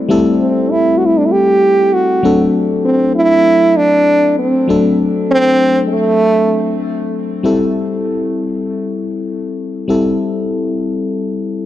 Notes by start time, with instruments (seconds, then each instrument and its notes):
0.09 fm electric piano G3 A3 C4 E4 A4
0.40 french horn C4
0.71 french horn E4
0.98 french horn F#4
1.06 french horn E4
1.17 french horn D4
1.26 french horn E4
1.31 french horn G4
1.93 french horn F#4
2.23 fm electric piano F#3 A3 C4 D4 A4
2.85 french horn C4
3.15 french horn E4
3.77 french horn D4
4.39 french horn C4
4.68 fm electric piano F#3 A3 C4 D4 A4
5.31 french horn C4
5.87 french horn G#3
5.92 french horn A3
7.43 fm electric piano G3 C4 E4 A4
9.88 fm electric piano G3 C4 E4 A4